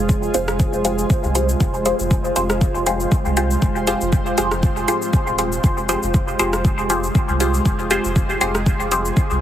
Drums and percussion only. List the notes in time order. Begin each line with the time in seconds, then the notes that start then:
0.09 kick, cabasa
0.23 cabasa
0.34 closed hi-hat, cabasa
0.48 cross-stick, cabasa
0.60 kick, cabasa
0.73 cabasa
0.85 closed hi-hat, cabasa
0.99 cabasa
1.10 kick, cabasa
1.24 cabasa
1.35 closed hi-hat, cabasa
1.49 cabasa
1.60 kick, cabasa
1.74 cabasa
1.86 closed hi-hat, cabasa
1.99 cabasa
2.11 kick, cabasa
2.25 cabasa
2.36 closed hi-hat, cabasa
2.50 cross-stick, cabasa
2.61 kick, cabasa
2.75 cabasa
2.86 closed hi-hat, cabasa
3.00 cabasa
3.12 kick, cabasa
3.25 cabasa
3.37 closed hi-hat, cabasa
3.51 cabasa
3.62 kick, cabasa
3.76 cabasa
3.87 closed hi-hat, cabasa
4.01 cabasa
4.12 kick, cabasa
4.26 cabasa
4.38 closed hi-hat, cabasa
4.51 cross-stick, cabasa
4.63 kick, cabasa
4.77 cabasa
4.88 closed hi-hat, cabasa
5.02 cabasa
5.13 kick, cabasa
5.27 cabasa
5.39 closed hi-hat, cabasa
5.52 cabasa
5.64 kick, cabasa
5.78 cabasa
5.89 closed hi-hat, cabasa
6.03 cabasa
6.14 kick, cabasa
6.28 cabasa
6.39 closed hi-hat, cabasa
6.53 cross-stick, cabasa
6.65 kick, cabasa
6.78 cabasa
6.90 closed hi-hat, cabasa
7.04 cabasa
7.15 kick, cabasa
7.29 cabasa
7.40 closed hi-hat, cabasa
7.54 cabasa
7.65 kick, cabasa
7.79 cabasa
7.91 closed hi-hat, cabasa
8.04 cabasa
8.16 kick, cabasa
8.30 cabasa
8.41 closed hi-hat, cabasa
8.55 cross-stick, cabasa
8.66 kick, cabasa
8.80 cabasa
8.92 closed hi-hat, cabasa
9.05 cabasa
9.17 kick, cabasa
9.30 cabasa